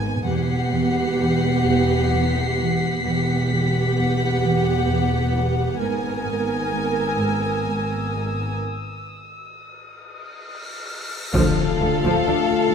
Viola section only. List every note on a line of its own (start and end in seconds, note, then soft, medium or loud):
0.00 0.24 A#3 soft
0.00 0.23 B3 soft
0.28 3.01 B3 soft
0.28 3.01 G4 soft
3.05 8.55 B3 soft
3.05 5.78 G4 soft
5.81 8.54 A#4 soft
11.34 11.56 F3 soft
11.80 11.88 A3 soft
12.04 12.25 F3 soft
12.28 12.36 D4 soft
12.51 12.59 A3 soft